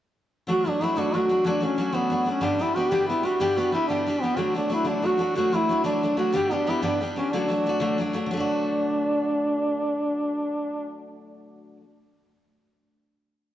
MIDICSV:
0, 0, Header, 1, 3, 480
1, 0, Start_track
1, 0, Key_signature, 2, "major"
1, 0, Tempo, 325027
1, 709, Time_signature, 6, 3, 24, 8
1, 20003, End_track
2, 0, Start_track
2, 0, Title_t, "Duduk"
2, 0, Program_c, 0, 69
2, 747, Note_on_c, 0, 66, 88
2, 1013, Note_on_c, 0, 62, 77
2, 1035, Note_off_c, 0, 66, 0
2, 1235, Note_on_c, 0, 64, 76
2, 1257, Note_off_c, 0, 62, 0
2, 1445, Note_on_c, 0, 62, 82
2, 1467, Note_off_c, 0, 64, 0
2, 1692, Note_on_c, 0, 66, 97
2, 1714, Note_off_c, 0, 62, 0
2, 2150, Note_off_c, 0, 66, 0
2, 2164, Note_on_c, 0, 62, 82
2, 2425, Note_on_c, 0, 61, 72
2, 2447, Note_off_c, 0, 62, 0
2, 2872, Note_on_c, 0, 59, 83
2, 2894, Note_off_c, 0, 61, 0
2, 3358, Note_off_c, 0, 59, 0
2, 3412, Note_on_c, 0, 61, 78
2, 3613, Note_on_c, 0, 62, 86
2, 3636, Note_off_c, 0, 61, 0
2, 3862, Note_on_c, 0, 64, 78
2, 3884, Note_off_c, 0, 62, 0
2, 4068, Note_on_c, 0, 66, 88
2, 4091, Note_off_c, 0, 64, 0
2, 4290, Note_on_c, 0, 67, 102
2, 4312, Note_off_c, 0, 66, 0
2, 4538, Note_off_c, 0, 67, 0
2, 4547, Note_on_c, 0, 64, 77
2, 4801, Note_on_c, 0, 66, 77
2, 4823, Note_off_c, 0, 64, 0
2, 5028, Note_on_c, 0, 67, 83
2, 5050, Note_off_c, 0, 66, 0
2, 5285, Note_on_c, 0, 66, 83
2, 5307, Note_off_c, 0, 67, 0
2, 5506, Note_off_c, 0, 66, 0
2, 5515, Note_on_c, 0, 64, 84
2, 5721, Note_off_c, 0, 64, 0
2, 5730, Note_on_c, 0, 62, 80
2, 6236, Note_on_c, 0, 59, 75
2, 6258, Note_off_c, 0, 62, 0
2, 6453, Note_on_c, 0, 66, 78
2, 6475, Note_off_c, 0, 59, 0
2, 6722, Note_off_c, 0, 66, 0
2, 6735, Note_on_c, 0, 62, 72
2, 6949, Note_off_c, 0, 62, 0
2, 6988, Note_on_c, 0, 64, 82
2, 7192, Note_off_c, 0, 64, 0
2, 7210, Note_on_c, 0, 62, 83
2, 7464, Note_on_c, 0, 66, 99
2, 7486, Note_off_c, 0, 62, 0
2, 7909, Note_off_c, 0, 66, 0
2, 7918, Note_on_c, 0, 66, 81
2, 8191, Note_on_c, 0, 64, 90
2, 8214, Note_off_c, 0, 66, 0
2, 8631, Note_off_c, 0, 64, 0
2, 8640, Note_on_c, 0, 62, 79
2, 9097, Note_off_c, 0, 62, 0
2, 9131, Note_on_c, 0, 66, 77
2, 9374, Note_on_c, 0, 67, 84
2, 9396, Note_off_c, 0, 66, 0
2, 9625, Note_on_c, 0, 62, 75
2, 9647, Note_off_c, 0, 67, 0
2, 9876, Note_on_c, 0, 64, 73
2, 9899, Note_off_c, 0, 62, 0
2, 10078, Note_off_c, 0, 64, 0
2, 10087, Note_on_c, 0, 62, 73
2, 10328, Note_off_c, 0, 62, 0
2, 10580, Note_on_c, 0, 61, 70
2, 10804, Note_on_c, 0, 62, 72
2, 10827, Note_off_c, 0, 61, 0
2, 12019, Note_off_c, 0, 62, 0
2, 12254, Note_on_c, 0, 62, 72
2, 16254, Note_off_c, 0, 62, 0
2, 20003, End_track
3, 0, Start_track
3, 0, Title_t, "Steel-string acoustic guitar"
3, 0, Program_c, 1, 25
3, 692, Note_on_c, 1, 50, 55
3, 709, Note_on_c, 1, 54, 59
3, 717, Note_on_c, 1, 57, 59
3, 719, Note_on_c, 1, 62, 67
3, 726, Note_on_c, 1, 66, 68
3, 938, Note_off_c, 1, 54, 0
3, 955, Note_off_c, 1, 57, 0
3, 956, Note_on_c, 1, 54, 54
3, 958, Note_off_c, 1, 50, 0
3, 972, Note_off_c, 1, 62, 0
3, 973, Note_on_c, 1, 57, 52
3, 975, Note_off_c, 1, 66, 0
3, 990, Note_on_c, 1, 66, 61
3, 992, Note_on_c, 1, 62, 48
3, 1176, Note_off_c, 1, 54, 0
3, 1191, Note_off_c, 1, 57, 0
3, 1194, Note_on_c, 1, 54, 53
3, 1209, Note_off_c, 1, 66, 0
3, 1209, Note_on_c, 1, 57, 57
3, 1210, Note_off_c, 1, 62, 0
3, 1225, Note_on_c, 1, 62, 52
3, 1236, Note_on_c, 1, 66, 70
3, 1407, Note_off_c, 1, 54, 0
3, 1412, Note_off_c, 1, 57, 0
3, 1412, Note_on_c, 1, 50, 51
3, 1424, Note_on_c, 1, 54, 55
3, 1425, Note_off_c, 1, 66, 0
3, 1426, Note_off_c, 1, 62, 0
3, 1430, Note_on_c, 1, 57, 60
3, 1443, Note_on_c, 1, 66, 59
3, 1444, Note_on_c, 1, 62, 60
3, 1660, Note_off_c, 1, 54, 0
3, 1677, Note_off_c, 1, 57, 0
3, 1678, Note_off_c, 1, 50, 0
3, 1678, Note_on_c, 1, 54, 52
3, 1688, Note_off_c, 1, 62, 0
3, 1693, Note_off_c, 1, 66, 0
3, 1695, Note_on_c, 1, 57, 52
3, 1706, Note_on_c, 1, 62, 52
3, 1725, Note_on_c, 1, 66, 56
3, 1891, Note_off_c, 1, 54, 0
3, 1900, Note_off_c, 1, 57, 0
3, 1909, Note_on_c, 1, 54, 53
3, 1917, Note_on_c, 1, 57, 54
3, 1918, Note_off_c, 1, 62, 0
3, 1919, Note_off_c, 1, 66, 0
3, 1936, Note_on_c, 1, 62, 49
3, 1937, Note_on_c, 1, 66, 50
3, 2133, Note_on_c, 1, 50, 61
3, 2134, Note_off_c, 1, 54, 0
3, 2144, Note_off_c, 1, 57, 0
3, 2144, Note_off_c, 1, 62, 0
3, 2150, Note_off_c, 1, 66, 0
3, 2152, Note_on_c, 1, 54, 64
3, 2161, Note_on_c, 1, 62, 67
3, 2162, Note_on_c, 1, 57, 64
3, 2168, Note_on_c, 1, 66, 76
3, 2352, Note_off_c, 1, 54, 0
3, 2370, Note_on_c, 1, 54, 53
3, 2373, Note_off_c, 1, 57, 0
3, 2389, Note_off_c, 1, 62, 0
3, 2391, Note_on_c, 1, 57, 54
3, 2398, Note_off_c, 1, 50, 0
3, 2407, Note_on_c, 1, 62, 58
3, 2408, Note_off_c, 1, 66, 0
3, 2426, Note_on_c, 1, 66, 53
3, 2607, Note_off_c, 1, 54, 0
3, 2618, Note_off_c, 1, 57, 0
3, 2625, Note_on_c, 1, 54, 60
3, 2631, Note_off_c, 1, 62, 0
3, 2636, Note_on_c, 1, 57, 49
3, 2646, Note_off_c, 1, 66, 0
3, 2648, Note_on_c, 1, 62, 61
3, 2664, Note_on_c, 1, 66, 66
3, 2828, Note_off_c, 1, 54, 0
3, 2842, Note_on_c, 1, 50, 48
3, 2846, Note_off_c, 1, 62, 0
3, 2846, Note_on_c, 1, 54, 54
3, 2851, Note_off_c, 1, 57, 0
3, 2854, Note_off_c, 1, 66, 0
3, 2864, Note_on_c, 1, 62, 50
3, 2868, Note_on_c, 1, 57, 59
3, 2871, Note_on_c, 1, 66, 60
3, 3082, Note_off_c, 1, 54, 0
3, 3096, Note_off_c, 1, 57, 0
3, 3100, Note_on_c, 1, 54, 51
3, 3110, Note_off_c, 1, 62, 0
3, 3112, Note_off_c, 1, 50, 0
3, 3113, Note_on_c, 1, 57, 50
3, 3127, Note_off_c, 1, 66, 0
3, 3128, Note_on_c, 1, 62, 57
3, 3143, Note_on_c, 1, 66, 59
3, 3298, Note_off_c, 1, 54, 0
3, 3316, Note_on_c, 1, 54, 46
3, 3319, Note_off_c, 1, 57, 0
3, 3332, Note_off_c, 1, 62, 0
3, 3337, Note_on_c, 1, 57, 44
3, 3347, Note_off_c, 1, 66, 0
3, 3350, Note_on_c, 1, 62, 57
3, 3364, Note_on_c, 1, 66, 52
3, 3554, Note_off_c, 1, 54, 0
3, 3555, Note_on_c, 1, 43, 65
3, 3558, Note_on_c, 1, 50, 67
3, 3560, Note_on_c, 1, 55, 68
3, 3562, Note_off_c, 1, 57, 0
3, 3568, Note_off_c, 1, 62, 0
3, 3568, Note_on_c, 1, 59, 56
3, 3578, Note_off_c, 1, 66, 0
3, 3584, Note_on_c, 1, 67, 74
3, 3586, Note_on_c, 1, 62, 66
3, 3810, Note_off_c, 1, 55, 0
3, 3827, Note_off_c, 1, 59, 0
3, 3827, Note_on_c, 1, 55, 53
3, 3829, Note_off_c, 1, 43, 0
3, 3831, Note_off_c, 1, 50, 0
3, 3837, Note_off_c, 1, 62, 0
3, 3844, Note_off_c, 1, 67, 0
3, 3845, Note_on_c, 1, 59, 57
3, 3855, Note_on_c, 1, 62, 61
3, 3869, Note_on_c, 1, 67, 51
3, 4057, Note_off_c, 1, 55, 0
3, 4074, Note_on_c, 1, 55, 53
3, 4076, Note_off_c, 1, 59, 0
3, 4081, Note_off_c, 1, 62, 0
3, 4088, Note_off_c, 1, 67, 0
3, 4092, Note_on_c, 1, 59, 56
3, 4096, Note_on_c, 1, 62, 51
3, 4119, Note_on_c, 1, 67, 64
3, 4289, Note_off_c, 1, 55, 0
3, 4291, Note_off_c, 1, 59, 0
3, 4296, Note_on_c, 1, 43, 61
3, 4299, Note_off_c, 1, 62, 0
3, 4306, Note_on_c, 1, 50, 64
3, 4307, Note_on_c, 1, 55, 68
3, 4308, Note_off_c, 1, 67, 0
3, 4309, Note_on_c, 1, 59, 66
3, 4317, Note_on_c, 1, 62, 57
3, 4326, Note_on_c, 1, 67, 62
3, 4552, Note_off_c, 1, 55, 0
3, 4555, Note_off_c, 1, 59, 0
3, 4560, Note_off_c, 1, 43, 0
3, 4565, Note_off_c, 1, 50, 0
3, 4570, Note_on_c, 1, 55, 54
3, 4571, Note_off_c, 1, 62, 0
3, 4573, Note_on_c, 1, 59, 58
3, 4575, Note_off_c, 1, 67, 0
3, 4593, Note_on_c, 1, 62, 54
3, 4602, Note_on_c, 1, 67, 65
3, 4757, Note_off_c, 1, 55, 0
3, 4774, Note_on_c, 1, 55, 53
3, 4778, Note_off_c, 1, 59, 0
3, 4783, Note_off_c, 1, 62, 0
3, 4796, Note_off_c, 1, 67, 0
3, 4796, Note_on_c, 1, 59, 45
3, 4800, Note_on_c, 1, 62, 58
3, 4814, Note_on_c, 1, 67, 47
3, 5017, Note_off_c, 1, 55, 0
3, 5019, Note_on_c, 1, 43, 59
3, 5022, Note_off_c, 1, 59, 0
3, 5023, Note_off_c, 1, 62, 0
3, 5027, Note_on_c, 1, 50, 68
3, 5028, Note_off_c, 1, 67, 0
3, 5033, Note_on_c, 1, 55, 68
3, 5040, Note_on_c, 1, 59, 78
3, 5040, Note_on_c, 1, 62, 63
3, 5046, Note_on_c, 1, 67, 78
3, 5248, Note_off_c, 1, 55, 0
3, 5261, Note_off_c, 1, 59, 0
3, 5266, Note_on_c, 1, 55, 48
3, 5274, Note_off_c, 1, 62, 0
3, 5279, Note_on_c, 1, 59, 62
3, 5282, Note_off_c, 1, 43, 0
3, 5286, Note_off_c, 1, 67, 0
3, 5287, Note_off_c, 1, 50, 0
3, 5291, Note_on_c, 1, 62, 58
3, 5303, Note_on_c, 1, 67, 57
3, 5480, Note_off_c, 1, 55, 0
3, 5498, Note_on_c, 1, 55, 52
3, 5501, Note_off_c, 1, 59, 0
3, 5515, Note_off_c, 1, 62, 0
3, 5519, Note_on_c, 1, 59, 59
3, 5526, Note_off_c, 1, 67, 0
3, 5533, Note_on_c, 1, 62, 55
3, 5543, Note_on_c, 1, 67, 58
3, 5738, Note_on_c, 1, 43, 54
3, 5739, Note_off_c, 1, 55, 0
3, 5745, Note_off_c, 1, 59, 0
3, 5748, Note_on_c, 1, 50, 52
3, 5757, Note_off_c, 1, 62, 0
3, 5758, Note_on_c, 1, 55, 59
3, 5762, Note_off_c, 1, 67, 0
3, 5763, Note_on_c, 1, 59, 59
3, 5773, Note_on_c, 1, 62, 56
3, 5780, Note_on_c, 1, 67, 65
3, 5983, Note_off_c, 1, 55, 0
3, 5997, Note_off_c, 1, 59, 0
3, 6001, Note_on_c, 1, 55, 52
3, 6003, Note_off_c, 1, 43, 0
3, 6008, Note_off_c, 1, 50, 0
3, 6008, Note_off_c, 1, 62, 0
3, 6015, Note_on_c, 1, 59, 47
3, 6024, Note_off_c, 1, 67, 0
3, 6026, Note_on_c, 1, 62, 57
3, 6047, Note_on_c, 1, 67, 59
3, 6227, Note_off_c, 1, 55, 0
3, 6238, Note_off_c, 1, 59, 0
3, 6245, Note_on_c, 1, 55, 48
3, 6249, Note_off_c, 1, 62, 0
3, 6256, Note_off_c, 1, 67, 0
3, 6256, Note_on_c, 1, 59, 47
3, 6264, Note_on_c, 1, 62, 51
3, 6274, Note_on_c, 1, 67, 55
3, 6448, Note_on_c, 1, 50, 61
3, 6449, Note_off_c, 1, 55, 0
3, 6455, Note_on_c, 1, 54, 68
3, 6464, Note_off_c, 1, 59, 0
3, 6465, Note_off_c, 1, 62, 0
3, 6470, Note_on_c, 1, 57, 72
3, 6474, Note_off_c, 1, 67, 0
3, 6480, Note_on_c, 1, 66, 59
3, 6482, Note_on_c, 1, 62, 65
3, 6697, Note_off_c, 1, 54, 0
3, 6715, Note_on_c, 1, 54, 52
3, 6718, Note_off_c, 1, 57, 0
3, 6719, Note_off_c, 1, 50, 0
3, 6724, Note_off_c, 1, 62, 0
3, 6735, Note_off_c, 1, 66, 0
3, 6735, Note_on_c, 1, 57, 54
3, 6742, Note_on_c, 1, 62, 55
3, 6756, Note_on_c, 1, 66, 54
3, 6913, Note_off_c, 1, 54, 0
3, 6926, Note_off_c, 1, 57, 0
3, 6931, Note_on_c, 1, 54, 56
3, 6944, Note_on_c, 1, 57, 62
3, 6949, Note_off_c, 1, 62, 0
3, 6950, Note_off_c, 1, 66, 0
3, 6966, Note_on_c, 1, 62, 59
3, 6968, Note_on_c, 1, 66, 49
3, 7137, Note_off_c, 1, 54, 0
3, 7145, Note_off_c, 1, 57, 0
3, 7150, Note_off_c, 1, 62, 0
3, 7152, Note_on_c, 1, 50, 52
3, 7154, Note_on_c, 1, 54, 55
3, 7160, Note_off_c, 1, 66, 0
3, 7163, Note_on_c, 1, 57, 55
3, 7168, Note_on_c, 1, 62, 58
3, 7178, Note_on_c, 1, 66, 69
3, 7400, Note_off_c, 1, 54, 0
3, 7415, Note_off_c, 1, 57, 0
3, 7418, Note_on_c, 1, 54, 49
3, 7424, Note_off_c, 1, 62, 0
3, 7433, Note_off_c, 1, 50, 0
3, 7433, Note_on_c, 1, 57, 55
3, 7442, Note_on_c, 1, 62, 54
3, 7446, Note_off_c, 1, 66, 0
3, 7465, Note_on_c, 1, 66, 54
3, 7627, Note_off_c, 1, 54, 0
3, 7645, Note_off_c, 1, 57, 0
3, 7645, Note_on_c, 1, 54, 44
3, 7660, Note_off_c, 1, 62, 0
3, 7663, Note_on_c, 1, 57, 56
3, 7670, Note_off_c, 1, 66, 0
3, 7678, Note_on_c, 1, 62, 54
3, 7687, Note_on_c, 1, 66, 57
3, 7897, Note_off_c, 1, 54, 0
3, 7906, Note_off_c, 1, 57, 0
3, 7908, Note_on_c, 1, 50, 63
3, 7913, Note_off_c, 1, 62, 0
3, 7918, Note_off_c, 1, 66, 0
3, 7918, Note_on_c, 1, 54, 60
3, 7938, Note_on_c, 1, 62, 67
3, 7939, Note_on_c, 1, 57, 67
3, 7951, Note_on_c, 1, 66, 73
3, 8144, Note_off_c, 1, 54, 0
3, 8160, Note_off_c, 1, 57, 0
3, 8161, Note_on_c, 1, 54, 57
3, 8169, Note_off_c, 1, 62, 0
3, 8172, Note_off_c, 1, 50, 0
3, 8178, Note_on_c, 1, 57, 55
3, 8183, Note_off_c, 1, 66, 0
3, 8187, Note_on_c, 1, 62, 60
3, 8201, Note_on_c, 1, 66, 67
3, 8387, Note_off_c, 1, 54, 0
3, 8404, Note_on_c, 1, 54, 55
3, 8409, Note_off_c, 1, 57, 0
3, 8414, Note_off_c, 1, 62, 0
3, 8421, Note_off_c, 1, 66, 0
3, 8426, Note_on_c, 1, 57, 49
3, 8438, Note_on_c, 1, 62, 60
3, 8454, Note_on_c, 1, 66, 65
3, 8615, Note_off_c, 1, 54, 0
3, 8622, Note_on_c, 1, 50, 52
3, 8627, Note_off_c, 1, 57, 0
3, 8633, Note_on_c, 1, 54, 64
3, 8635, Note_off_c, 1, 62, 0
3, 8643, Note_off_c, 1, 66, 0
3, 8644, Note_on_c, 1, 57, 63
3, 8653, Note_on_c, 1, 62, 64
3, 8661, Note_on_c, 1, 66, 64
3, 8886, Note_off_c, 1, 54, 0
3, 8891, Note_off_c, 1, 50, 0
3, 8897, Note_off_c, 1, 57, 0
3, 8904, Note_on_c, 1, 54, 52
3, 8906, Note_off_c, 1, 62, 0
3, 8910, Note_off_c, 1, 66, 0
3, 8915, Note_on_c, 1, 57, 47
3, 8923, Note_on_c, 1, 62, 57
3, 8943, Note_on_c, 1, 66, 62
3, 9093, Note_off_c, 1, 54, 0
3, 9097, Note_off_c, 1, 57, 0
3, 9110, Note_on_c, 1, 54, 50
3, 9115, Note_on_c, 1, 57, 54
3, 9116, Note_off_c, 1, 62, 0
3, 9121, Note_off_c, 1, 66, 0
3, 9133, Note_on_c, 1, 62, 57
3, 9138, Note_on_c, 1, 66, 62
3, 9342, Note_on_c, 1, 43, 60
3, 9351, Note_off_c, 1, 54, 0
3, 9353, Note_on_c, 1, 50, 65
3, 9355, Note_off_c, 1, 57, 0
3, 9357, Note_on_c, 1, 55, 66
3, 9358, Note_off_c, 1, 62, 0
3, 9367, Note_off_c, 1, 66, 0
3, 9370, Note_on_c, 1, 59, 64
3, 9376, Note_on_c, 1, 62, 77
3, 9387, Note_on_c, 1, 67, 71
3, 9594, Note_off_c, 1, 55, 0
3, 9597, Note_off_c, 1, 59, 0
3, 9612, Note_off_c, 1, 43, 0
3, 9612, Note_on_c, 1, 55, 57
3, 9615, Note_on_c, 1, 59, 56
3, 9617, Note_off_c, 1, 62, 0
3, 9618, Note_off_c, 1, 50, 0
3, 9632, Note_off_c, 1, 67, 0
3, 9634, Note_on_c, 1, 62, 57
3, 9649, Note_on_c, 1, 67, 66
3, 9829, Note_off_c, 1, 55, 0
3, 9836, Note_off_c, 1, 59, 0
3, 9847, Note_on_c, 1, 55, 61
3, 9854, Note_on_c, 1, 59, 57
3, 9860, Note_off_c, 1, 62, 0
3, 9868, Note_off_c, 1, 67, 0
3, 9882, Note_on_c, 1, 62, 61
3, 9896, Note_on_c, 1, 67, 64
3, 10064, Note_off_c, 1, 55, 0
3, 10064, Note_on_c, 1, 43, 53
3, 10071, Note_off_c, 1, 59, 0
3, 10073, Note_off_c, 1, 62, 0
3, 10075, Note_on_c, 1, 50, 55
3, 10081, Note_on_c, 1, 55, 65
3, 10082, Note_off_c, 1, 67, 0
3, 10088, Note_on_c, 1, 59, 63
3, 10091, Note_on_c, 1, 62, 54
3, 10099, Note_on_c, 1, 67, 69
3, 10328, Note_off_c, 1, 55, 0
3, 10335, Note_off_c, 1, 43, 0
3, 10340, Note_off_c, 1, 50, 0
3, 10343, Note_off_c, 1, 59, 0
3, 10346, Note_on_c, 1, 55, 48
3, 10348, Note_off_c, 1, 62, 0
3, 10352, Note_off_c, 1, 67, 0
3, 10361, Note_on_c, 1, 59, 54
3, 10375, Note_on_c, 1, 62, 57
3, 10389, Note_on_c, 1, 67, 55
3, 10558, Note_off_c, 1, 55, 0
3, 10571, Note_off_c, 1, 59, 0
3, 10575, Note_on_c, 1, 55, 48
3, 10589, Note_on_c, 1, 59, 46
3, 10592, Note_off_c, 1, 62, 0
3, 10599, Note_off_c, 1, 67, 0
3, 10611, Note_on_c, 1, 62, 53
3, 10620, Note_on_c, 1, 67, 48
3, 10808, Note_off_c, 1, 55, 0
3, 10815, Note_off_c, 1, 59, 0
3, 10826, Note_off_c, 1, 62, 0
3, 10826, Note_on_c, 1, 50, 65
3, 10831, Note_off_c, 1, 67, 0
3, 10834, Note_on_c, 1, 54, 64
3, 10840, Note_on_c, 1, 57, 61
3, 10847, Note_on_c, 1, 62, 74
3, 10854, Note_on_c, 1, 66, 62
3, 11031, Note_off_c, 1, 54, 0
3, 11048, Note_on_c, 1, 54, 53
3, 11057, Note_off_c, 1, 57, 0
3, 11072, Note_off_c, 1, 62, 0
3, 11074, Note_on_c, 1, 57, 53
3, 11077, Note_off_c, 1, 50, 0
3, 11077, Note_off_c, 1, 66, 0
3, 11090, Note_on_c, 1, 62, 56
3, 11095, Note_on_c, 1, 66, 64
3, 11290, Note_off_c, 1, 54, 0
3, 11303, Note_off_c, 1, 57, 0
3, 11310, Note_on_c, 1, 54, 51
3, 11311, Note_off_c, 1, 62, 0
3, 11313, Note_off_c, 1, 66, 0
3, 11323, Note_on_c, 1, 57, 56
3, 11330, Note_on_c, 1, 62, 58
3, 11355, Note_on_c, 1, 66, 67
3, 11497, Note_off_c, 1, 54, 0
3, 11515, Note_on_c, 1, 54, 60
3, 11518, Note_on_c, 1, 50, 70
3, 11519, Note_off_c, 1, 57, 0
3, 11522, Note_off_c, 1, 66, 0
3, 11524, Note_off_c, 1, 62, 0
3, 11536, Note_on_c, 1, 57, 67
3, 11540, Note_on_c, 1, 66, 68
3, 11541, Note_on_c, 1, 62, 73
3, 11767, Note_off_c, 1, 54, 0
3, 11784, Note_off_c, 1, 50, 0
3, 11785, Note_on_c, 1, 54, 56
3, 11789, Note_off_c, 1, 57, 0
3, 11795, Note_off_c, 1, 62, 0
3, 11795, Note_off_c, 1, 66, 0
3, 11807, Note_on_c, 1, 57, 58
3, 11818, Note_on_c, 1, 62, 65
3, 11834, Note_on_c, 1, 66, 62
3, 11992, Note_off_c, 1, 54, 0
3, 12007, Note_off_c, 1, 57, 0
3, 12010, Note_on_c, 1, 54, 54
3, 12024, Note_off_c, 1, 62, 0
3, 12025, Note_on_c, 1, 57, 62
3, 12039, Note_off_c, 1, 66, 0
3, 12042, Note_on_c, 1, 62, 67
3, 12057, Note_on_c, 1, 66, 53
3, 12201, Note_on_c, 1, 50, 64
3, 12247, Note_off_c, 1, 54, 0
3, 12254, Note_off_c, 1, 57, 0
3, 12263, Note_off_c, 1, 62, 0
3, 12268, Note_on_c, 1, 54, 73
3, 12270, Note_off_c, 1, 66, 0
3, 12309, Note_on_c, 1, 57, 70
3, 12361, Note_on_c, 1, 62, 75
3, 12410, Note_on_c, 1, 66, 84
3, 17370, Note_off_c, 1, 50, 0
3, 17437, Note_off_c, 1, 54, 0
3, 17478, Note_off_c, 1, 57, 0
3, 17530, Note_off_c, 1, 62, 0
3, 17579, Note_off_c, 1, 66, 0
3, 20003, End_track
0, 0, End_of_file